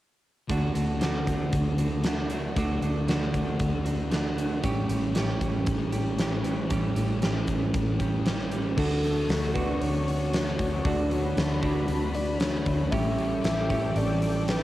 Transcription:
0.48 fingered electric bass D2, distorted electric guitar D3 A3 D4, overdriven electric guitar D3 A3 D4 F#4, kick, closed hi-hat
0.73 fingered electric bass D2, distorted electric guitar A3 D4, overdriven electric guitar A3 D4 F#4, closed hi-hat
1.00 distorted electric guitar D3 A3 D4, overdriven electric guitar D3 A3 D4 F#4, snare, closed hi-hat
1.27 kick, closed hi-hat
1.51 fingered electric bass D2, distorted electric guitar D3 A3 D4, kick, closed hi-hat
1.78 overdriven electric guitar A3 D4 F#4, distorted electric guitar A3 D4, closed hi-hat
2.03 distorted electric guitar D3 A3 D4, overdriven electric guitar D3 A3 D4 F#4, snare, closed hi-hat
2.30 distorted electric guitar A3 D4, overdriven electric guitar A3 D4 F#4, closed hi-hat
2.56 fingered electric bass D2, distorted electric guitar D3 A3 D4, overdriven electric guitar D3 A3 D4 F#4, kick, closed hi-hat
2.81 fingered electric bass D2, distorted electric guitar A3 D4, overdriven electric guitar A3 D4 F#4, closed hi-hat
3.07 distorted electric guitar D3 A3 D4, overdriven electric guitar D3 A3 D4 F#4, snare, closed hi-hat
3.34 kick, closed hi-hat
3.58 fingered electric bass D2, distorted electric guitar D3 A3 D4, kick, closed hi-hat
3.84 overdriven electric guitar A3 D4 F#4, distorted electric guitar A3 D4, closed hi-hat
4.10 distorted electric guitar D3 A3 D4, overdriven electric guitar D3 A3 D4 F#4, snare, closed hi-hat
4.37 distorted electric guitar A3 D4, overdriven electric guitar A3 D4 F#4, closed hi-hat
4.62 fingered electric bass A1, distorted electric guitar A2 E3 A3, overdriven electric guitar A2 E3 G3 C#4 G4, kick, closed hi-hat
4.88 fingered electric bass A1, distorted electric guitar E3 A3, overdriven electric guitar G3 C#4 G4, closed hi-hat
5.13 distorted electric guitar A2 E3 A3, overdriven electric guitar A2 E3 G3 C#4 G4, snare, closed hi-hat
5.41 kick, closed hi-hat
5.65 fingered electric bass A1, distorted electric guitar A2 E3 A3, kick, closed hi-hat
5.90 distorted electric guitar E3 A3, overdriven electric guitar C#4 G4, closed hi-hat
5.95 overdriven electric guitar G3
6.16 distorted electric guitar A2 E3 A3, overdriven electric guitar E3 G3, snare, closed hi-hat
6.20 overdriven electric guitar C#4 G4
6.42 distorted electric guitar E3 A3, overdriven electric guitar G3 C#4 G4, closed hi-hat
6.67 fingered electric bass A1, distorted electric guitar A2 E3 A3, overdriven electric guitar A2 E3 G3 C#4, kick, closed hi-hat
6.72 overdriven electric guitar G4
6.93 fingered electric bass A1, distorted electric guitar E3 A3, overdriven electric guitar C#4 G4, closed hi-hat
6.98 overdriven electric guitar G3
7.19 distorted electric guitar A2 E3 A3, overdriven electric guitar A2 E3 G3 C#4, snare, closed hi-hat
7.24 overdriven electric guitar G4
7.47 kick, closed hi-hat
7.72 fingered electric bass A1, distorted electric guitar A2 E3 A3, kick, closed hi-hat
7.99 distorted electric guitar E3 A3, overdriven electric guitar G3 C#4 G4, kick, closed hi-hat
8.25 distorted electric guitar A2 E3 A3, overdriven electric guitar E3 G3 C#4 G4, snare, closed hi-hat
8.39 snare
8.50 distorted electric guitar E3 A3, overdriven electric guitar G3 C#4 G4, closed hi-hat
8.76 fingered electric bass D2, overdriven electric guitar D3 A3 D4 F#4, distorted electric guitar D3 A3 D4, analog synth pad D4 F#4 C#6, soft synth lead A4, kick, crash
9.03 distorted electric guitar A3 D4, open hi-hat
9.29 fingered electric bass D2, distorted electric guitar D3 A3 D4, snare, open hi-hat
9.54 overdriven electric guitar D3 A3 D4 F#4, distorted electric guitar A3 D4, soft synth lead B4, kick, open hi-hat
9.81 fingered electric bass D2, distorted electric guitar D3 A3 D4, soft synth lead C#5, open hi-hat
10.07 distorted electric guitar A3 D4, open hi-hat
10.33 distorted electric guitar D3 A3 D4, snare, open hi-hat
10.59 fingered electric bass D2, distorted electric guitar A3 D4, kick, open hi-hat
10.84 fingered electric bass D2, overdriven electric guitar D3 A3 D4 F#4, distorted electric guitar D3 A3, soft synth lead D5, analog synth pad B5, kick, open hi-hat
10.88 distorted electric guitar D4
11.11 distorted electric guitar A3 D4, soft synth lead C#5, open hi-hat
11.36 fingered electric bass D2, distorted electric guitar D3 A3 D4, snare, open hi-hat
11.61 overdriven electric guitar D3 A3 D4 F#4, distorted electric guitar A3 D4, kick, open hi-hat
11.87 fingered electric bass D2, distorted electric guitar D3 A3 D4, open hi-hat
12.14 distorted electric guitar A3 D4, soft synth lead D5, open hi-hat
12.38 distorted electric guitar D3 A3 D4, soft synth lead C#5, snare, open hi-hat
12.64 fingered electric bass D2, distorted electric guitar A3 D4, kick, open hi-hat
12.91 fingered electric bass A1, overdriven electric guitar A2 E3 G3 C#4 G4, distorted electric guitar A2 E3 A3, analog synth pad A4 G5 D6, soft synth lead E5, kick, open hi-hat
13.17 distorted electric guitar E3 A3, open hi-hat
13.43 fingered electric bass A1, distorted electric guitar A2 E3 A3, soft synth lead E5, snare, open hi-hat
13.69 overdriven electric guitar A2 E3 G3 C#4 G4, distorted electric guitar E3 A3, kick, open hi-hat
13.95 fingered electric bass A1, distorted electric guitar A2 E3 A3, soft synth lead D5, open hi-hat
14.20 distorted electric guitar E3 A3, open hi-hat
14.47 distorted electric guitar A2 E3 A3, soft synth lead B4, snare, open hi-hat

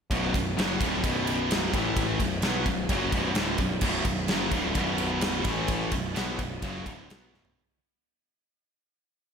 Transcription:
0.10 picked electric bass B0, distorted electric guitar B1 F#2 B2, kick, ride
0.34 picked electric bass B0, distorted electric guitar B1 F#2, kick, ride
0.57 picked electric bass F#1, distorted electric guitar F#2 C#3 F#3, snare, ride
0.80 picked electric bass D1, distorted electric guitar D2 A2 D3, kick, ride
1.04 picked electric bass B0, distorted electric guitar B1 F#2 B2, kick, ride
1.27 ride
1.51 snare, ride
1.74 picked electric bass A1, distorted electric guitar A2 E3 A3, kick, ride
1.97 kick, ride
2.20 picked electric bass B0, distorted electric guitar B1 F#2, kick, ride
2.42 picked electric bass B1, distorted electric guitar B2 F#3 B3, snare, ride
2.66 picked electric bass B0, distorted electric guitar B1 F#2, kick, ride
2.89 picked electric bass F#1, distorted electric guitar F#2 C#3 F#3, kick, ride
3.12 picked electric bass B0, distorted electric guitar B1 F#2 B2, kick, ride
3.35 picked electric bass D1, distorted electric guitar D2 A2 D3, snare, ride
3.58 picked electric bass B0, distorted electric guitar B1 F#2, kick, ride
3.81 picked electric bass B0, distorted electric guitar B1 F#2 B2, kick, crash
4.04 picked electric bass B0, distorted electric guitar B1 F#2, kick, ride
4.08 distorted electric guitar F#2
4.28 picked electric bass F#1, distorted electric guitar F#2 C#3 F#3, snare, ride
4.50 picked electric bass D1, distorted electric guitar D2 A2 D3, kick, ride
4.55 distorted electric guitar D2 A2 D3
4.75 picked electric bass B0, distorted electric guitar B1 B2, kick, ride
4.79 distorted electric guitar F#2 B2
4.98 ride
5.21 snare, ride
5.44 picked electric bass A1, distorted electric guitar A2 E3 A3, kick, ride
5.68 kick, ride
5.92 picked electric bass B0, distorted electric guitar B1 F#2, kick, ride
6.16 picked electric bass B1, distorted electric guitar B2 F#3 B3, snare, ride
6.39 picked electric bass B0, distorted electric guitar B1 F#2, kick, ride
6.62 picked electric bass F#1, distorted electric guitar F#2 C#3 F#3, kick, ride
6.85 picked electric bass D1, distorted electric guitar D2 A2 D3, kick, ride
7.10 picked electric bass B1, distorted electric guitar B2 F#3 B3, snare, ride
7.32 picked electric bass B0, distorted electric guitar B1 F#2 B2, snare
7.45 floor tom

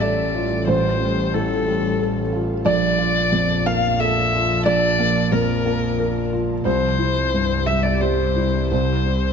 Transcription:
Already playing: felt piano A1 A2 G3 F4 C5 E5, double bass A1, ambient pad G3 F4 A4
0.00 felt piano A4 D5, violin D5
0.35 felt piano F4
0.67 felt piano A1 C5, violin C5
1.01 felt piano G3
1.33 felt piano A2 A4, violin A4
1.66 felt piano G3
2.00 felt piano A4
2.33 felt piano F4
2.65 felt piano A#1 D5, double bass A#1, ambient pad F3 F4 A5, violin D5
2.99 felt piano F4
3.32 felt piano F2
3.66 felt piano A#3 F5, violin F5
3.99 felt piano A4 E5, violin E5
4.33 felt piano F4
4.66 felt piano A#1 D5, violin D5
4.99 felt piano A#3
5.32 felt piano F2 A#4, violin A#4
5.66 felt piano A#3
6.00 felt piano A#4
6.33 felt piano F4
6.65 felt piano C2 C5, double bass C2, ambient pad G3 E4 G4, violin C5
6.99 felt piano E4
7.34 felt piano G2
7.66 felt piano G3 E5, violin E5
7.83 violin D5, felt piano D5
8.01 felt piano G4 C5, violin C5
8.36 felt piano E4
8.71 felt piano C2 C5, violin C5
9.05 felt piano G3

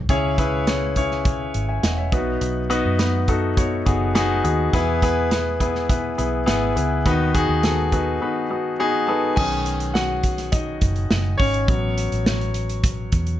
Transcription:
0.09 fingered electric bass C#2, grand piano C#3 C#4 E4 G#4 C#5, kick, closed hi-hat
0.38 grand piano C#4 E4 G#4 B4, kick, closed hi-hat
0.67 grand piano C#4 E4 G#4 C#5, snare, closed hi-hat
0.96 grand piano C#4 E4 G#4 C#5, kick, closed hi-hat
1.11 snare
1.25 kick, closed hi-hat
1.54 fingered electric bass G#1, closed hi-hat
1.69 grand piano E5 G#5
1.83 fingered electric bass E1, grand piano D#5 F#5, snare, closed hi-hat
1.98 grand piano C#5 E5
2.12 fingered electric bass B1, grand piano B2 B3 D#4 F#4 B4, kick, closed hi-hat
2.41 fingered electric bass B1, closed hi-hat
2.70 grand piano B3 D#4 F#4 B4, closed hi-hat
2.85 fingered electric bass F#2
2.99 grand piano B3 D#4 F#4 B4, snare, closed hi-hat
3.28 grand piano B3 D#4 F#4 A4, kick, closed hi-hat
3.57 grand piano B3 D#4 F#4 C#5, kick, closed hi-hat
3.86 fingered electric bass F#1, grand piano B3 D#4 F#4 G#4, kick, closed hi-hat
4.15 grand piano B3 D#4 F#4 G#4, snare, closed hi-hat
4.44 fingered electric bass D#2, grand piano B3 D#4 F#4 G#4, closed hi-hat
4.73 fingered electric bass E2, grand piano E3 B3 E4 G#4 B4, kick, closed hi-hat
5.02 grand piano B3 E4 G#4 B4, kick, closed hi-hat
5.31 grand piano B3 E4 G#4 B4, snare, closed hi-hat
5.60 grand piano B3 E4 G#4 B4, kick, closed hi-hat
5.75 snare
5.89 grand piano B3 E4 G#4 B4, kick, closed hi-hat
6.18 fingered electric bass B1, grand piano B3 E4 G#4 B4, closed hi-hat
6.46 fingered electric bass G#1, grand piano B3 E4 G#4 B4, snare, closed hi-hat
6.76 fingered electric bass C#2, grand piano B3 E4 G#4 B4, closed hi-hat
7.06 fingered electric bass D#2, grand piano D#3 B3 D#4 F#4 B4, kick, closed hi-hat
7.34 grand piano B3 D#4 F#4 G#4, kick, closed hi-hat
7.49 fingered electric bass D#2
7.63 grand piano B3 D#4 F#4 A4, snare, closed hi-hat
7.92 grand piano B3 D#4 F#4 B4, kick, closed hi-hat
8.22 grand piano B3 D#4 F#4 B4
8.50 grand piano B3 D#4 F#4 B4
8.80 grand piano B3 D#4 F#4 G#4
9.07 grand piano B3 D#4 F#4 A4 B4 A5
9.36 fingered electric bass B1, grand piano D#3 B3 C#4 G#4 G#5, kick, crash
9.52 closed hi-hat
9.66 closed hi-hat
9.80 closed hi-hat
9.94 grand piano F#4 F#5, snare
10.23 kick, closed hi-hat
10.38 snare, closed hi-hat
10.52 grand piano D#4 D#5, kick, closed hi-hat
10.81 fingered electric bass F#1, kick, closed hi-hat
10.96 closed hi-hat
11.11 fingered electric bass F#1, snare
11.38 fingered electric bass G#1, grand piano C#4 C#5, kick, open hi-hat
11.54 closed hi-hat
11.68 fingered electric bass A1, grand piano F#3 B3 C#4, kick, closed hi-hat
11.98 closed hi-hat
12.12 fingered electric bass A1, closed hi-hat
12.26 snare
12.41 closed hi-hat
12.54 closed hi-hat
12.69 closed hi-hat
12.84 kick, closed hi-hat
13.12 fingered electric bass E2, kick, closed hi-hat
13.27 closed hi-hat

